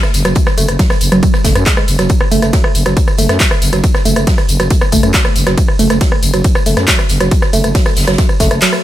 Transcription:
0.03 cross-stick, closed hi-hat, tambourine
0.14 fm bass F#1, snare, closed hi-hat, open hi-hat, tambourine
0.25 fm bass F#1, synth arpeggio sound F#3, cross-stick, closed hi-hat, tambourine
0.35 synth arpeggio sound F#3, kick, closed hi-hat, ride, tambourine
0.46 cross-stick, snare, tambourine
0.57 fm bass F#1, synth arpeggio sound A3, closed hi-hat, open hi-hat, tambourine
0.68 fm bass F#1, cross-stick, closed hi-hat, tambourine
0.79 synth arpeggio sound F#3, kick, snare, closed hi-hat, open hi-hat, ride, tambourine
0.90 cross-stick, snare, tambourine
1.01 fm bass F#1, closed hi-hat, open hi-hat, tambourine
1.12 fm bass F#1, synth arpeggio sound F#3, cross-stick, closed hi-hat, tambourine
1.23 synth arpeggio sound F#3, kick, closed hi-hat, ride, tambourine
1.33 cross-stick, snare, tambourine
1.44 fm bass F#1, synth arpeggio sound A3, kick, snare, closed hi-hat, open hi-hat, tambourine
1.55 fm bass F#2, cross-stick, closed hi-hat, tambourine
1.66 synth arpeggio sound G#3, kick, snare, clap, closed hi-hat, ride, tambourine
1.76 synth arpeggio sound G#3, cross-stick, snare, tambourine
1.88 fm bass F#1, snare, closed hi-hat, open hi-hat, tambourine
1.99 fm bass F#1, synth arpeggio sound F#3, cross-stick, snare, closed hi-hat, tambourine
2.09 kick, closed hi-hat, ride, tambourine
2.21 cross-stick
2.31 fm bass F#1, synth arpeggio sound A3, closed hi-hat, open hi-hat, tambourine
2.42 fm bass F#1, synth arpeggio sound A3, cross-stick, snare, closed hi-hat, tambourine
2.53 synth arpeggio sound F#3, kick, snare, closed hi-hat, ride, tambourine
2.64 cross-stick
2.75 fm bass F#1, closed hi-hat, open hi-hat, tambourine
2.86 fm bass F#1, synth arpeggio sound F#3, cross-stick, closed hi-hat, tambourine
2.97 synth arpeggio sound F#3, kick, closed hi-hat, ride, tambourine
3.08 cross-stick, tambourine
3.17 fm bass F#1, synth arpeggio sound A3, closed hi-hat, open hi-hat, tambourine
3.29 fm bass F#2, synth arpeggio sound A3, cross-stick, snare, closed hi-hat, tambourine
3.40 synth arpeggio sound F#3, kick, snare, clap, closed hi-hat, ride, tambourine
3.51 cross-stick, closed hi-hat, tambourine
3.62 fm bass F#1, snare, closed hi-hat, open hi-hat, tambourine
3.73 fm bass F#1, synth arpeggio sound F#3, cross-stick, closed hi-hat, tambourine
3.84 synth arpeggio sound F#3, kick, closed hi-hat, ride, tambourine
3.95 cross-stick, snare, tambourine
4.05 fm bass F#1, synth arpeggio sound A3, closed hi-hat, open hi-hat, tambourine
4.16 fm bass F#1, synth arpeggio sound A3, cross-stick, closed hi-hat, tambourine
4.27 synth arpeggio sound F#3, kick, snare, closed hi-hat, open hi-hat, ride, tambourine
4.38 cross-stick, snare, tambourine
4.49 fm bass F#1, closed hi-hat, open hi-hat, tambourine
4.60 fm bass F#1, synth arpeggio sound F#3, cross-stick, closed hi-hat, tambourine
4.70 synth arpeggio sound F#3, kick, closed hi-hat, ride, tambourine
4.81 cross-stick, tambourine
4.92 fm bass F#1, synth arpeggio sound A3, kick, closed hi-hat, open hi-hat, tambourine
5.03 fm bass F#2, synth arpeggio sound A3, cross-stick, closed hi-hat, tambourine
5.13 synth arpeggio sound F#3, kick, snare, clap, closed hi-hat, ride, tambourine
5.25 cross-stick, tambourine
5.35 fm bass F#1, snare, closed hi-hat, open hi-hat, tambourine
5.46 fm bass F#1, synth arpeggio sound F#3, cross-stick, snare, closed hi-hat, tambourine
5.57 synth arpeggio sound F#3, kick, closed hi-hat, ride, tambourine
5.68 cross-stick
5.79 fm bass F#1, synth arpeggio sound A3, closed hi-hat, open hi-hat, tambourine
5.90 fm bass F#1, synth arpeggio sound A3, cross-stick, snare, closed hi-hat, tambourine
6.01 synth arpeggio sound F#3, kick, snare, closed hi-hat, ride, tambourine
6.12 cross-stick
6.23 fm bass F#1, closed hi-hat, open hi-hat, tambourine
6.33 fm bass F#1, synth arpeggio sound F#3, cross-stick, closed hi-hat, tambourine
6.44 kick, closed hi-hat, ride, tambourine
6.55 cross-stick, tambourine
6.66 fm bass F#1, synth arpeggio sound A3, closed hi-hat, open hi-hat, tambourine
6.77 fm bass F#2, synth arpeggio sound A3, cross-stick, snare, closed hi-hat, tambourine
6.88 synth arpeggio sound F#3, kick, snare, clap, closed hi-hat, ride, tambourine
6.99 cross-stick, tambourine
7.09 fm bass F#1, snare, closed hi-hat, open hi-hat, tambourine
7.20 fm bass F#1, synth arpeggio sound F#3, cross-stick, closed hi-hat, tambourine
7.31 kick, closed hi-hat, ride, tambourine
7.42 cross-stick, snare, tambourine
7.53 fm bass F#1, synth arpeggio sound A3, closed hi-hat, open hi-hat, tambourine
7.64 fm bass F#1, synth arpeggio sound A3, cross-stick, closed hi-hat, tambourine
7.74 synth arpeggio sound F#3, kick, snare, closed hi-hat, open hi-hat, ride, tambourine
7.86 cross-stick, snare, tambourine
7.96 fm bass F#1, snare, closed hi-hat, open hi-hat, tambourine
8.02 snare, closed hi-hat
8.07 fm bass F#1, synth arpeggio sound F#3, cross-stick, snare, closed hi-hat, tambourine
8.13 snare, closed hi-hat
8.18 synth arpeggio sound F#3, kick, snare, closed hi-hat, ride, tambourine
8.29 cross-stick, tambourine
8.40 fm bass F#1, synth arpeggio sound A3, kick, snare, closed hi-hat, open hi-hat, tambourine
8.51 fm bass F#1, synth arpeggio sound A3, cross-stick, closed hi-hat, tambourine
8.62 synth arpeggio sound F#3, clap, closed hi-hat, ride, tambourine
8.73 cross-stick, tambourine

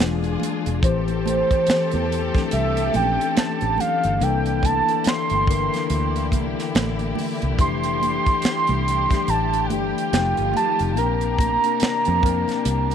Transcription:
Already playing: tine electric piano E3
0.00 fingered electric bass E1, string section E3 D4 F4 G#4, tine electric piano D4 F4, snare, closed hi-hat
0.05 tine electric piano G#3
0.23 closed hi-hat, muted conga
0.40 closed hi-hat, high conga, low conga
0.66 fingered electric bass E1, closed hi-hat
0.82 fingered electric bass A1, tine electric piano E3 A3 C4 G4, string section C4 G4 A4, soft synth lead C5, kick, closed hi-hat, muted conga
1.08 closed hi-hat, muted conga
1.26 closed hi-hat, high conga
1.51 kick, closed hi-hat
1.66 muted fingered electric bass stroke, snare, closed hi-hat, muted conga
1.91 fingered electric bass E2, closed hi-hat, high conga
2.12 closed hi-hat
2.34 tine electric piano E3 A3 C4 D4, kick, snare, closed hi-hat, low conga
2.51 fingered electric bass C2, soft synth lead E5, closed hi-hat
2.77 closed hi-hat, muted conga
2.93 fingered electric bass A#1, tine electric piano E3 A3 C4 C#4, soft synth lead G5, closed hi-hat, high conga
3.03 tine electric piano D4
3.21 closed hi-hat
3.37 soft synth lead A5, muted fingered electric bass stroke, snare, closed hi-hat, muted conga, high conga
3.61 fingered electric bass A1, closed hi-hat, muted conga
3.78 soft synth lead F5, closed hi-hat, high conga, low conga
4.04 fingered electric bass G1, closed hi-hat
4.20 fingered electric bass C2, string section D3 A#3 E4 G4, tine electric piano E3 A#3 D4 A4, soft synth lead G5, closed hi-hat, muted conga
4.46 closed hi-hat
4.63 soft synth lead A5, kick, closed hi-hat, high conga
4.88 tine electric piano E3 A#3 D4 A4, closed hi-hat
5.04 soft synth lead C6, muted fingered electric bass stroke, snare, closed hi-hat, muted conga
5.30 fingered electric bass G1, closed hi-hat, high conga
5.47 tine electric piano D3 A#3 D4 A#4, kick, closed hi-hat
5.53 tine electric piano E3
5.73 snare, closed hi-hat, low conga
5.89 fingered electric bass D2, closed hi-hat, muted conga
6.16 closed hi-hat
6.32 fingered electric bass C2, kick, closed hi-hat, high conga
6.59 snare, closed hi-hat
6.75 fingered electric bass A1, snare, closed hi-hat, muted conga, high conga
6.99 closed hi-hat, muted conga
7.15 open hi-hat, high conga, low conga
7.42 fingered electric bass C2, closed hi-hat
7.58 fingered electric bass F1, tine electric piano E3 A3 D4 G4, string section G3, soft synth lead C6, kick, closed hi-hat, muted conga
7.84 closed hi-hat, muted conga
8.02 closed hi-hat, high conga
8.26 kick, closed hi-hat
8.42 muted fingered electric bass stroke, snare, closed hi-hat
8.67 fingered electric bass C2, closed hi-hat, muted conga, high conga
8.88 closed hi-hat
9.10 tine electric piano E3 A3 D4 G4, kick, snare, closed hi-hat, low conga
9.27 fingered electric bass A1, soft synth lead A5, closed hi-hat, muted conga
9.53 closed hi-hat, muted conga
9.66 fingered electric bass G1, tine electric piano E3, soft synth lead F#5, high conga
9.70 tine electric piano A3 D4 G4, soft synth lead G5, closed hi-hat
9.98 closed hi-hat
10.11 fingered electric bass F1, string section D#3 G3 F4, tine electric piano F3 A3 D#4 G4, snare, closed hi-hat, high conga
10.37 fingered electric bass G1, closed hi-hat
10.54 soft synth lead A5, closed hi-hat, high conga, low conga
10.79 fingered electric bass F1, closed hi-hat
10.93 tine electric piano A#3, soft synth lead A5, muted conga
10.97 fingered electric bass A#1, string section C3 A#3 D4, tine electric piano C4 D4 A#4, soft synth lead A#5, closed hi-hat
11.21 closed hi-hat
11.38 kick, closed hi-hat, high conga
11.63 tine electric piano A#3 C4 D4 A#4, closed hi-hat
11.80 muted fingered electric bass stroke, snare, closed hi-hat
12.05 fingered electric bass F2, closed hi-hat, high conga
12.22 tine electric piano A#3 C4 D4 A#4, kick, closed hi-hat
12.48 snare, closed hi-hat, low conga
12.65 fingered electric bass C2, closed hi-hat, muted conga
12.90 closed hi-hat, muted conga

